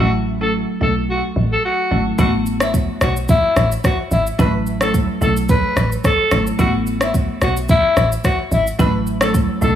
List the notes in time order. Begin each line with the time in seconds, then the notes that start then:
0.00 A1 F#3 A3 C#4 E4 F#4
0.41 F#3 A3 C#4 E4 A4
0.81 B1 F#3 A3 C#4 E4 A4
1.10 F#4
1.36 A1
1.53 A4
1.65 F#4
1.91 G#1 F#3 A3 C#4 E4
2.18 A1 A3 B3 C#4 E4 F#4, kick, shaker
2.46 shaker
2.60 E4, cross-stick, shaker
2.74 kick, shaker
3.01 B1 F#4, cross-stick, shaker
3.17 shaker
3.28 E4, kick, shaker
3.56 A1, cross-stick, shaker
3.72 shaker
3.84 F#4, kick, cross-stick, shaker
4.11 G#1 E4, shaker
4.27 shaker
4.39 A1 F#3 A3 C#4 E4 B4, kick, shaker
4.67 shaker
4.81 F#3 A3 C#4 E4 A4, cross-stick, shaker
4.94 kick, shaker
5.21 B1 F#3 A3 C#4 E4 A4, shaker
5.37 shaker
5.49 B4, kick, shaker
5.76 A1, cross-stick, shaker
5.92 shaker
6.04 A4, kick, cross-stick, shaker
6.31 G#1 F#3 A3 C#4 E4, cross-stick, shaker
6.47 shaker
6.59 A1 A3 B3 C#4 E4 F#4, kick, shaker
6.87 shaker
7.01 E4, cross-stick, shaker
7.14 kick, shaker
7.42 B1 F#4, cross-stick, shaker
7.57 shaker
7.69 E4, kick, shaker
7.97 A1, cross-stick, shaker
8.12 shaker
8.24 F#4, kick, cross-stick, shaker
8.52 G#1 E4, shaker
8.67 shaker
8.79 A1 F#3 A3 C#4 E4 B4, kick, shaker
9.07 shaker
9.21 F#3 A3 C#4 E4 A4, cross-stick, shaker
9.34 kick, shaker
9.62 B1 F#3 A3 C#4 E4 A4, shaker